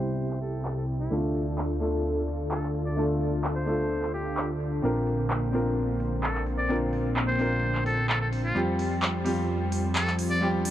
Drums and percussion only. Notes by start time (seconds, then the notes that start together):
0.30 clap
0.42 open hi-hat
0.65 clap
0.88 open hi-hat
1.35 open hi-hat
1.58 clap
1.81 open hi-hat
2.28 open hi-hat
2.51 clap
2.63 clap
2.74 open hi-hat
3.21 open hi-hat
3.44 clap
3.67 open hi-hat
4.02 clap
4.14 open hi-hat
4.26 open hi-hat
4.37 clap
4.60 open hi-hat
5.07 open hi-hat
5.30 clap
5.54 open hi-hat
6.00 open hi-hat
6.23 clap
6.35 clap
6.46 open hi-hat
6.93 open hi-hat
7.16 clap
7.40 open hi-hat
7.75 clap
7.86 open hi-hat
8.09 clap
8.33 open hi-hat
8.79 open hi-hat
9.02 clap
9.26 open hi-hat
9.72 open hi-hat
9.95 clap
10.07 clap
10.19 open hi-hat
10.65 open hi-hat